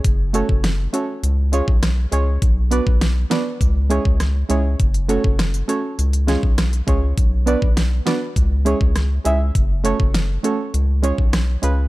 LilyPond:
<<
  \new Staff \with { instrumentName = "Synth stab" } { \time 4/4 \key fis \minor \tempo 4 = 101 r8 <a cis' fis' a' cis''>8 r8 <a cis' fis' a' cis''>8 r8 <gis cis' eis' gis' cis''>8 r8 <gis cis' eis' gis' cis''>8 | r8 <b d' fis' b' d''>8 r8 <b d' fis' b' d''>8 r8 <gis cis' e' gis' cis''>8 r8 <gis cis' e' gis' cis''>8 | r8 <a cis' fis' a' cis''>8 r8 <a cis' fis' a' cis''>8 r8 <gis cis' eis' gis' cis''>8 r8 <gis cis' eis' gis' cis''>8 | r8 <b d' fis' b' d''>8 r8 <b d' fis' b' d''>8 r8 <gis cis' e' gis' cis''>8 r8 <gis cis' e' gis' e''>8 |
r8 <a cis' fis' a' cis''>8 r8 <a cis' fis' a' cis''>8 r8 <gis cis' eis' gis' cis''>8 r8 <gis cis' eis' gis' b'>8 | }
  \new Staff \with { instrumentName = "Analog synth bass" } { \clef bass \time 4/4 \key fis \minor fis,,8. fis,,8. r8 cis,8. b,,8. cis,8 | b,,8. b,,8. r8 cis,8. cis,8. cis,8 | fis,,8. fis,,8. r8 cis,8. b,,8. cis,8 | b,,8. b,,8. r8 cis,8. cis,8. cis,8 |
fis,,8. fis,,8. r8 cis,8. b,,8. cis,8 | }
  \new DrumStaff \with { instrumentName = "Drums" } \drummode { \time 4/4 <hh bd>8 hh16 bd16 <hh sn>8 hh8 hh8 hh16 bd16 <hh ss sn>8 hh8 | <hh bd>8 hh16 bd16 <hh sn>8 <hh sn>8 <hh bd>8 hh16 bd16 <hh ss sn>8 hh8 | <hh bd>16 hh16 hh16 bd16 <hh ss sn>16 hh16 hh8 hh16 hh16 <hh sn>16 bd16 <hh ss sn>16 hh16 <hh bd>8 | <hh bd>8 hh16 bd16 <hh sn>8 <hh sn>8 <hh bd>8 hh16 bd16 <hh ss sn>8 hh8 |
<hh bd>8 hh16 bd16 <hh sn>8 hh8 hh8 hh16 bd16 <hh ss sn>8 hh8 | }
>>